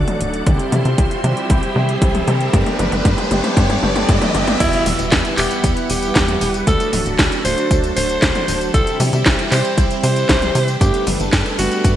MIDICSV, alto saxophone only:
0, 0, Header, 1, 2, 480
1, 0, Start_track
1, 0, Key_signature, 1, "minor"
1, 0, Tempo, 517241
1, 432, Time_signature, 4, 2, 24, 8
1, 11102, End_track
2, 0, Start_track
2, 0, Title_t, "Alto saxophone"
2, 0, Program_c, 0, 65
2, 4271, Note_on_c, 0, 64, 104
2, 4504, Note_off_c, 0, 64, 0
2, 4991, Note_on_c, 0, 67, 101
2, 5302, Note_off_c, 0, 67, 0
2, 5471, Note_on_c, 0, 67, 101
2, 6095, Note_off_c, 0, 67, 0
2, 6192, Note_on_c, 0, 69, 102
2, 6425, Note_off_c, 0, 69, 0
2, 6912, Note_on_c, 0, 72, 99
2, 7223, Note_off_c, 0, 72, 0
2, 7392, Note_on_c, 0, 72, 106
2, 8016, Note_off_c, 0, 72, 0
2, 8111, Note_on_c, 0, 69, 102
2, 8345, Note_off_c, 0, 69, 0
2, 8831, Note_on_c, 0, 72, 97
2, 9142, Note_off_c, 0, 72, 0
2, 9311, Note_on_c, 0, 72, 105
2, 9935, Note_off_c, 0, 72, 0
2, 10030, Note_on_c, 0, 67, 106
2, 10264, Note_off_c, 0, 67, 0
2, 10751, Note_on_c, 0, 66, 98
2, 11062, Note_off_c, 0, 66, 0
2, 11102, End_track
0, 0, End_of_file